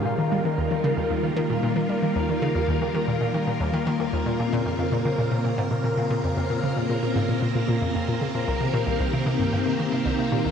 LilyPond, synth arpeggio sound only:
\new Staff \with { instrumentName = "Synth arpeggio sound" } { \clef bass \time 4/4 \key bes \dorian \tempo 4 = 114 bes,16 ees16 g16 ees16 ees,16 ees16 des16 ees,16 ees,16 ees16 ees16 bes,16 bes,16 ees16 g16 ees16 | ees,16 ees16 des16 ees,16 ees,16 ees16 ees16 bes,16 bes,16 ees16 bes,16 ees,16 ees16 ees16 ees16 ees,16 | bes,16 bes,16 bes,16 f,16 f,16 bes,16 des16 bes,16 bes,16 bes,16 aes,16 bes,16 bes,16 bes,16 bes,16 f,16 | f,16 bes,16 des16 bes,16 bes,16 bes,16 aes,16 bes,16 bes,16 bes,16 bes,16 f,16 f,16 bes,16 des16 bes,16 |
c,16 c16 bes,16 c,16 c,16 c16 c16 g,16 g,16 c16 ees16 c16 c,16 c16 bes,16 c,16 | }